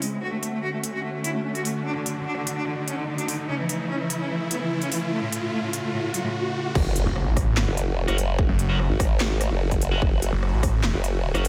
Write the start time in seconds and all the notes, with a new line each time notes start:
Already playing: C#3 G#3 E4, riser
0.02 G#3, open hi-hat
0.12 G#3
0.22 D3 A3 F#4
0.33 A3
0.43 A3, closed hi-hat
0.53 A3
0.63 F#4
0.73 A3
0.83 A3, closed hi-hat
0.94 F#4
1.04 A3
1.14 A3
1.24 E4, closed hi-hat
1.35 A3
1.45 A3
1.55 F#4, closed hi-hat
1.65 A3, open hi-hat
1.76 A3
1.86 D4
1.96 D3
2.06 D3, closed hi-hat
2.16 D3
2.27 D4
2.37 D3
2.47 D3, closed hi-hat
2.57 D4
2.67 D3
2.78 D3
2.88 C#4, closed hi-hat
2.98 D3
3.08 D3
3.18 D4, closed hi-hat
3.28 D3, open hi-hat
3.39 D3
3.49 C#3 A3 C#4 E4
3.59 E3
3.69 E3, closed hi-hat
3.80 E3
3.90 C#4
4.00 E3
4.10 E3, closed hi-hat
4.20 C#4
4.30 E3
4.41 E3
4.51 B3, closed hi-hat
4.61 E3
4.71 E3
4.82 C#4, closed hi-hat
4.92 E3, open hi-hat
5.02 E3
5.12 A3
5.22 A2
5.32 A2, closed hi-hat
5.43 A2
5.53 A3
5.63 A2
5.73 A2, closed hi-hat
5.84 A3
5.94 A2
6.04 A2
6.14 F#3, closed hi-hat
6.24 A2
6.75 F#1 F#4, kick, cross-stick, crash, impact
6.96 closed hi-hat
7.06 F#1
7.16 cross-stick
7.26 A1
7.37 kick, cross-stick, open hi-hat
7.57 snare, clap
7.67 F#1
7.77 closed hi-hat
8.08 F#1 F#3 C#4 F#4, cross-stick, closed hi-hat
8.18 closed hi-hat
8.39 kick, cross-stick
8.49 F#1
8.59 closed hi-hat
8.69 F#3 C#4 F#4
8.79 cross-stick
8.90 G#1
9.00 kick, cross-stick, open hi-hat
9.20 snare, clap
9.41 cross-stick, closed hi-hat
9.51 F#1
9.71 kick, closed hi-hat
9.81 closed hi-hat
9.92 F#3 C#4 F#4
10.02 F#1, kick, cross-stick
10.22 closed hi-hat
10.33 F#1
10.43 cross-stick
10.53 A1
10.63 kick, cross-stick, open hi-hat
10.84 snare, clap
10.94 F#1
11.04 closed hi-hat
11.34 F#1 F#3 C#4 F#4, cross-stick, closed hi-hat
11.45 closed hi-hat